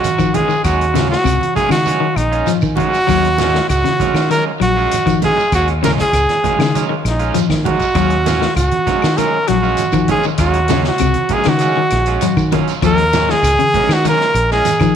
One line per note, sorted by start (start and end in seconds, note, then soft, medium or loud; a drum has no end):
0.00 0.36 F#4 medium
0.00 shekere medium
0.04 closed hi-hat medium
0.04 high conga medium
0.18 0.44 D#3 medium
0.18 0.39 F3 medium
0.18 kick medium
0.18 closed hi-hat soft
0.18 claves medium
0.18 shekere medium
0.34 0.53 G#3 medium
0.34 0.53 C#4 medium
0.34 0.53 F4 medium
0.34 0.63 G#4 medium
0.34 kick medium
0.34 closed hi-hat soft
0.34 high conga medium
0.34 low conga medium
0.34 shekere soft
0.48 0.69 D#3 medium
0.48 shekere medium
0.64 1.15 D#2 medium
0.64 0.83 F#3 medium
0.64 0.84 G#3 medium
0.64 0.84 C#4 medium
0.64 0.84 F4 medium
0.64 1.07 F#4 medium
0.64 kick medium
0.64 closed hi-hat medium
0.64 claves medium
0.64 shekere medium
0.81 closed hi-hat soft
0.94 1.15 C#3 medium
0.94 1.14 F#3 soft
0.94 1.14 C#4 medium
0.94 1.15 F4 medium
0.94 snare medium
0.94 closed hi-hat soft
0.94 high conga medium
0.94 low conga medium
0.94 shekere medium
1.10 1.53 F#4 loud
1.10 snare medium
1.10 shekere soft
1.24 1.38 C#2 medium
1.24 1.45 C3 medium
1.24 closed hi-hat medium
1.24 claves medium
1.24 shekere medium
1.41 closed hi-hat soft
1.41 high conga medium
1.55 1.74 F#3 soft
1.55 1.75 G#3 medium
1.55 1.75 C#4 medium
1.55 1.75 F4 medium
1.55 1.71 G#4 medium
1.55 muted fingered electric bass stroke soft
1.55 kick medium
1.55 closed hi-hat soft
1.55 low conga medium
1.55 shekere soft
1.69 1.90 C#3 medium
1.69 1.96 D#3 medium
1.69 2.18 F#4 medium
1.69 closed hi-hat soft
1.69 claves medium
1.69 shekere medium
1.73 snare medium
1.85 2.05 F#3 medium
1.85 2.05 G#3 medium
1.85 2.05 C#4 medium
1.85 2.06 F4 medium
1.85 closed hi-hat medium
1.85 high conga soft
1.85 low conga medium
1.85 shekere medium
2.00 2.21 D#3 medium
2.16 2.42 A#1 medium
2.16 2.51 D#4 medium
2.16 closed hi-hat soft
2.16 claves medium
2.32 2.52 G#3 soft
2.32 2.51 C#4 medium
2.32 2.51 F4 medium
2.32 closed hi-hat soft
2.32 shekere soft
2.46 2.68 F3 medium
2.46 closed hi-hat medium
2.46 high conga medium
2.46 shekere medium
2.61 2.88 D#3 medium
2.61 kick medium
2.61 high conga medium
2.61 claves medium
2.61 shekere medium
2.76 2.98 D#3 medium
2.76 2.97 F#3 medium
2.76 2.97 G#3 medium
2.76 2.97 C#4 medium
2.76 2.97 F4 medium
2.76 3.65 F#4 loud
2.76 kick medium
2.76 closed hi-hat soft
2.76 high conga medium
2.76 low conga medium
2.76 shekere soft
2.94 closed hi-hat soft
2.94 shekere medium
3.07 3.59 D#2 loud
3.07 3.28 F#3 medium
3.07 3.27 F#3 soft
3.07 3.28 G#3 medium
3.07 3.28 C#4 medium
3.07 3.28 F4 medium
3.07 kick medium
3.07 snare soft
3.07 closed hi-hat medium
3.07 claves medium
3.07 shekere medium
3.25 closed hi-hat soft
3.38 3.58 F#3 medium
3.38 3.58 G#3 medium
3.38 3.58 C#4 medium
3.38 3.59 F4 medium
3.38 snare medium
3.38 closed hi-hat medium
3.38 high conga loud
3.38 shekere medium
3.54 3.75 D#3 medium
3.54 snare medium
3.54 shekere soft
3.69 3.82 C#2 medium
3.69 4.27 F#4 medium
3.69 closed hi-hat medium
3.69 high conga soft
3.69 claves medium
3.69 shekere medium
3.84 4.05 C#3 medium
3.84 snare soft
3.84 closed hi-hat soft
3.84 high conga medium
4.00 4.19 F#3 medium
4.00 4.19 G#3 medium
4.00 4.19 C#4 medium
4.00 4.19 F4 medium
4.00 muted fingered electric bass stroke soft
4.00 kick medium
4.00 closed hi-hat soft
4.00 high conga medium
4.00 low conga medium
4.00 shekere soft
4.14 4.40 D#3 medium
4.14 snare medium
4.14 claves medium
4.14 shekere medium
4.30 4.50 D#3 medium
4.30 4.49 F#3 medium
4.30 4.50 G#3 soft
4.30 4.50 C#4 medium
4.30 4.50 F4 medium
4.30 4.45 A#4 medium
4.30 closed hi-hat medium
4.30 high conga soft
4.30 shekere medium
4.60 4.86 A#1 medium
4.60 4.81 F#3 medium
4.60 5.19 F#4 medium
4.60 closed hi-hat soft
4.60 claves medium
4.76 4.96 G#3 soft
4.76 4.95 C#4 soft
4.76 4.95 F4 medium
4.76 shekere soft
4.91 closed hi-hat medium
4.91 high conga medium
4.91 shekere medium
5.06 5.32 D#3 medium
5.06 5.27 F3 medium
5.06 kick medium
5.06 closed hi-hat soft
5.06 claves medium
5.06 shekere medium
5.22 5.41 F#3 medium
5.22 5.42 G#3 medium
5.22 5.42 C#4 medium
5.22 5.42 F4 medium
5.22 5.52 G#4 medium
5.22 kick medium
5.22 closed hi-hat soft
5.22 high conga medium
5.22 low conga medium
5.22 shekere soft
5.38 muted clean electric guitar stroke medium
5.38 shekere medium
5.52 6.02 D#2 medium
5.52 5.71 G#3 medium
5.52 5.72 C#4 medium
5.52 5.72 F4 medium
5.52 5.68 F#4 medium
5.52 muted clean electric guitar stroke medium
5.52 kick medium
5.52 closed hi-hat medium
5.52 claves medium
5.52 shekere medium
5.68 closed hi-hat soft
5.82 6.03 C#3 medium
5.82 6.01 F#3 medium
5.82 6.02 G#3 medium
5.82 6.02 C#4 medium
5.82 6.02 F4 medium
5.82 5.91 A#4 medium
5.82 snare medium
5.82 closed hi-hat medium
5.82 high conga loud
5.82 low conga medium
5.82 shekere medium
5.98 6.87 G#4 medium
5.98 kick medium
5.98 snare medium
6.13 6.26 C#2 medium
6.13 closed hi-hat medium
6.13 claves medium
6.13 shekere medium
6.29 snare soft
6.29 closed hi-hat soft
6.29 high conga medium
6.44 6.62 F#3 medium
6.44 6.62 G#3 medium
6.44 6.63 C#4 medium
6.44 6.63 F4 medium
6.44 muted fingered electric bass stroke soft
6.44 kick medium
6.44 closed hi-hat medium
6.44 high conga medium
6.44 low conga medium
6.44 shekere soft
6.59 6.80 C#3 medium
6.59 6.84 D#3 medium
6.59 snare medium
6.59 closed hi-hat soft
6.59 claves medium
6.59 shekere medium
6.75 6.93 F#3 medium
6.75 6.94 G#3 medium
6.75 6.94 C#4 medium
6.75 6.94 F4 medium
6.75 closed hi-hat medium
6.75 high conga soft
6.75 low conga medium
6.75 shekere medium
6.89 7.10 D#3 medium
7.05 7.30 A#1 medium
7.05 7.37 D#4 medium
7.05 snare soft
7.05 closed hi-hat soft
7.05 claves medium
7.19 7.39 G#3 soft
7.19 7.38 C#4 soft
7.19 7.38 F4 medium
7.19 closed hi-hat soft
7.19 shekere soft
7.34 7.55 F3 medium
7.34 closed hi-hat medium
7.34 high conga medium
7.34 shekere medium
7.49 7.75 D#3 medium
7.49 kick medium
7.49 snare medium
7.49 claves medium
7.49 shekere medium
7.65 7.84 F#3 medium
7.65 7.84 G#3 medium
7.65 7.85 F4 medium
7.65 8.53 F#4 medium
7.65 kick medium
7.65 closed hi-hat medium
7.65 high conga medium
7.65 low conga medium
7.65 shekere soft
7.79 kick medium
7.79 closed hi-hat soft
7.79 shekere medium
7.95 8.45 D#2 loud
7.95 8.14 F#3 medium
7.95 8.16 F#3 medium
7.95 8.14 G#3 medium
7.95 8.15 C#4 medium
7.95 8.14 F4 medium
7.95 kick medium
7.95 closed hi-hat medium
7.95 claves medium
7.95 shekere medium
8.10 closed hi-hat soft
8.26 8.45 C#4 medium
8.26 8.46 F4 medium
8.26 muted clean electric guitar stroke medium
8.26 snare medium
8.26 closed hi-hat soft
8.26 high conga medium
8.26 shekere medium
8.42 8.62 D#3 medium
8.42 snare medium
8.42 shekere soft
8.56 8.69 C#2 medium
8.56 9.19 F#4 medium
8.56 closed hi-hat medium
8.56 high conga soft
8.56 claves medium
8.56 shekere medium
8.71 closed hi-hat soft
8.71 high conga medium
8.86 9.06 F#3 medium
8.86 9.06 G#3 medium
8.86 9.06 C#4 medium
8.86 9.06 F4 medium
8.86 muted fingered electric bass stroke soft
8.86 kick medium
8.86 closed hi-hat medium
8.86 low conga medium
8.86 shekere soft
9.02 9.29 D#3 medium
9.02 snare medium
9.02 claves medium
9.02 shekere medium
9.17 9.38 D#3 medium
9.17 9.36 F#3 medium
9.17 9.37 G#3 medium
9.17 9.37 C#4 medium
9.17 9.37 F4 medium
9.17 9.49 A#4 medium
9.17 closed hi-hat medium
9.17 high conga soft
9.17 low conga medium
9.17 shekere medium
9.47 9.74 A#1 medium
9.47 9.69 F#3 medium
9.47 10.09 F#4 medium
9.47 snare soft
9.47 closed hi-hat soft
9.47 claves medium
9.63 9.82 G#3 soft
9.63 9.82 C#4 medium
9.63 9.82 F4 medium
9.63 shekere soft
9.77 closed hi-hat medium
9.77 high conga medium
9.77 shekere medium
9.92 10.18 D#3 medium
9.92 10.14 F3 medium
9.92 kick medium
9.92 closed hi-hat soft
9.92 high conga medium
9.92 claves medium
9.92 shekere medium
10.08 10.28 F#3 medium
10.08 10.28 G#3 medium
10.08 10.28 C#4 medium
10.08 10.28 F4 medium
10.08 10.25 G#4 medium
10.08 kick medium
10.08 closed hi-hat medium
10.08 high conga medium
10.08 low conga medium
10.08 shekere soft
10.23 10.45 D#3 medium
10.23 shekere medium
10.38 10.89 D#2 loud
10.38 10.58 F#3 medium
10.38 10.58 G#3 medium
10.38 10.58 C#4 medium
10.38 10.58 F4 medium
10.38 10.82 F#4 medium
10.38 kick loud
10.38 snare soft
10.38 closed hi-hat medium
10.38 high conga soft
10.38 claves medium
10.38 shekere medium
10.53 closed hi-hat soft
10.68 10.90 C#3 medium
10.68 10.88 F#3 medium
10.68 10.88 G#3 medium
10.68 10.89 C#4 medium
10.68 10.89 F4 medium
10.68 snare medium
10.68 closed hi-hat soft
10.68 high conga loud
10.68 low conga medium
10.68 shekere medium
10.84 11.35 F#4 medium
10.84 snare medium
10.84 shekere soft
10.98 11.14 C#2 medium
10.98 11.20 C3 medium
10.98 closed hi-hat medium
10.98 claves medium
10.98 shekere medium
11.14 closed hi-hat soft
11.14 high conga medium
11.29 11.49 F#3 medium
11.29 11.50 G#3 medium
11.29 11.50 C#4 medium
11.29 11.50 F4 medium
11.29 muted fingered electric bass stroke soft
11.29 kick medium
11.29 closed hi-hat soft
11.29 low conga medium
11.29 shekere soft
11.33 11.50 G#4 medium
11.43 11.66 C#3 medium
11.43 11.72 D#3 medium
11.43 snare medium
11.43 closed hi-hat soft
11.43 claves medium
11.43 shekere medium
11.49 12.54 F#4 medium
11.59 11.79 F#3 soft
11.59 11.80 G#3 medium
11.59 11.80 C#4 medium
11.59 11.80 F4 medium
11.59 closed hi-hat medium
11.59 high conga soft
11.59 shekere medium
11.77 11.97 D#3 medium
11.90 12.17 A#1 medium
11.90 snare soft
11.90 closed hi-hat soft
11.90 claves medium
12.06 12.26 G#3 soft
12.06 12.26 C#4 medium
12.06 12.26 F4 medium
12.06 closed hi-hat soft
12.06 shekere soft
12.21 12.43 F#3 medium
12.21 closed hi-hat medium
12.21 high conga medium
12.21 shekere medium
12.37 12.62 D#3 medium
12.37 kick medium
12.37 claves medium
12.37 shekere medium
12.52 12.73 D#3 medium
12.52 12.72 F#3 medium
12.52 12.72 C#4 medium
12.52 12.72 F4 medium
12.52 muted clean electric guitar stroke medium
12.52 kick medium
12.52 closed hi-hat soft
12.52 high conga medium
12.52 low conga medium
12.52 shekere soft
12.67 closed hi-hat soft
12.67 shekere medium
12.82 13.33 D#2 medium
12.82 13.03 F3 medium
12.82 13.02 F#3 medium
12.82 13.02 G#3 medium
12.82 13.02 C#4 medium
12.82 13.03 F4 medium
12.82 13.32 A#4 loud
12.82 kick medium
12.82 closed hi-hat medium
12.82 claves medium
12.82 shekere medium
12.98 closed hi-hat soft
13.13 13.32 F#3 medium
13.13 13.33 G#3 medium
13.13 13.33 C#4 medium
13.13 13.33 F4 medium
13.13 snare medium
13.13 closed hi-hat soft
13.13 high conga loud
13.13 shekere medium
13.28 13.49 D#3 medium
13.28 13.94 G#4 loud
13.28 snare medium
13.28 shekere soft
13.43 13.56 C#2 medium
13.43 closed hi-hat medium
13.43 high conga soft
13.43 claves medium
13.43 shekere medium
13.59 13.79 C#3 medium
13.59 closed hi-hat soft
13.59 high conga medium
13.73 13.93 F#3 medium
13.73 13.93 G#3 medium
13.73 13.93 C#4 medium
13.73 muted fingered electric bass stroke soft
13.73 muted clean electric guitar stroke medium
13.73 kick medium
13.73 closed hi-hat soft
13.73 low conga medium
13.73 shekere soft
13.89 14.14 D#3 medium
13.89 14.07 F#4 medium
13.89 snare medium
13.89 claves medium
13.89 shekere medium
14.05 14.25 D#3 medium
14.05 14.24 F#3 medium
14.05 14.24 G#3 medium
14.05 14.24 C#4 medium
14.05 14.24 F4 medium
14.05 closed hi-hat medium
14.05 high conga soft
14.05 low conga medium
14.05 shekere medium
14.09 14.50 A#4 medium
14.21 snare soft
14.34 14.60 A#1 medium
14.34 closed hi-hat medium
14.34 claves medium
14.51 14.70 G#3 soft
14.51 14.70 C#4 soft
14.51 14.94 G#4 medium
14.51 snare soft
14.51 shekere soft
14.65 closed hi-hat medium
14.65 high conga medium
14.65 shekere medium
14.80 14.96 D#3 medium
14.80 14.96 F3 medium
14.80 kick medium
14.80 closed hi-hat soft
14.80 high conga medium
14.80 claves medium
14.80 shekere medium